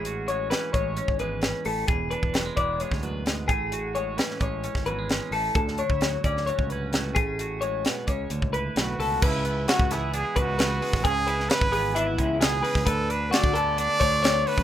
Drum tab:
CC |----------------|----------------|----------------|----------------|
HH |x-x-x-x-x-x-x-o-|x-x-x-x-x-x-x-x-|x-x-x-x-x-x-x-o-|x-x-x-x-x-x-x-x-|
SD |----o-------o---|----o----o--o---|----oo---o--o---|-o--o--o----o---|
BD |------o--o------|o--o--o--o----o-|------o--o------|o--o--o--o----o-|

CC |----------------|x---------------|----------------|----------------|
HH |x-x-x-x-x-x-x-o-|--x-x-x-x-x-x-o-|x-x-x-o-x-x-x-o-|x-x-x-x-x-x-x-o-|
SD |----o-------o---|----o-o-----o--o|---oo-------o--o|----o-------o---|
BD |------o--o------|o----o----o----o|o----o----o----o|o----o----o----o|